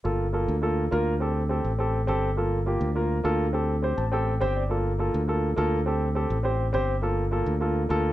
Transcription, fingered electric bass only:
X:1
M:4/4
L:1/8
Q:1/4=206
K:Gm
V:1 name="Fingered electric bass" clef=bass
G,,,3 D,,3 D,,2- | D,,3 A,,,3 G,,,2- | G,,,3 D,,3 D,,2- | D,,3 A,,,3 G,,,2- |
G,,,3 D,,3 D,,2- | D,,3 A,,,3 G,,,2- | G,,,3 D,,3 D,,2 |]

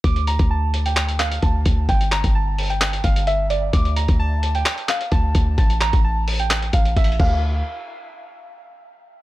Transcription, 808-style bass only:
X:1
M:4/4
L:1/16
Q:1/4=130
K:Dm
V:1 name="808-style bass" clef=bass
D,,3 D,,8- D,, D,,2 D,,2 | G,,,3 G,,,6- G,,, G,,,6 | D,,3 D,,4- D,, z4 D,,2 D,,2 | A,,,3 A,,,6- A,,, A,,,2 A,,,2 D,,2- |
D,,2 z12 z2 |]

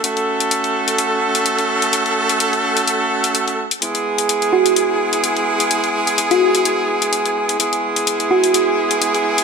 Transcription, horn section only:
X:1
M:4/4
L:1/8
Q:"Swing 16ths" 1/4=127
K:Emix
V:1 name="Horn section"
[A,CFA]8- | [A,CFA]8 | [G,B,EG]8- | [G,B,EG]8 |
[G,B,EG]8 |]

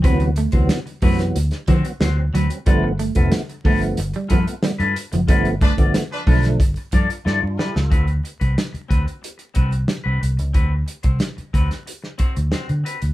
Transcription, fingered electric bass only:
X:1
M:4/4
L:1/16
Q:1/4=91
K:G
V:1 name="Fingered electric bass" clef=bass
D,,3 D,, z2 F,,2 D,, z D, z D,,2 D,, z | G,,,3 =F,,, z2 G,,,2 G,,, z G,, z2 G,, z ^F,,, | G,,,3 G,,, z2 B,,,2 G,,, z G,, z G,, G,, z ^C,, | D,,2 z C,, z2 D,, z3 C,,2 z C,, C,, ^C,, |
D,,2 z C,, z2 D,, z4 D,, z D, z D,, |]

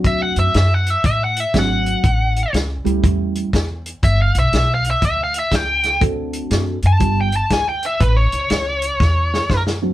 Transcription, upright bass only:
X:1
M:4/4
L:1/8
Q:"Swing" 1/4=121
K:Ador
V:1 name="Upright bass" clef=bass
D,, F,, F,,2 A,,2 ^G,,,2 | A,,,2 ^C,, C,, E,,2 E,,2 | G,,, B,,, B,,,2 D,,2 ^C,,2 | D,,2 F,, F,, G,,,2 D,,2 |
A,,, ^C,, C,,2 E,,2 F,,2 |]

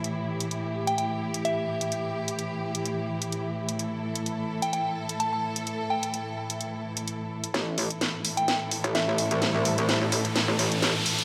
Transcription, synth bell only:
X:1
M:4/4
L:1/16
Q:"Swing 16ths" 1/4=128
K:C
V:1 name="Synth bell"
z6 z g g z3 e4- | e2 z12 z2 | z6 z g g z3 a a z2 | z2 g3 z8 z3 |
z6 z g g z3 e4- | e2 z12 z2 |]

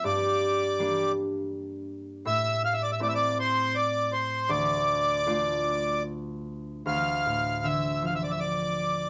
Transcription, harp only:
X:1
M:3/4
L:1/8
Q:1/4=79
K:Dm
V:1 name="Harp" clef=bass
G,,2 [G,B,D]4 | A,,2 [A,CE]4 | D,,2 [A,DF]4 | D,, A,, D, F,3 |]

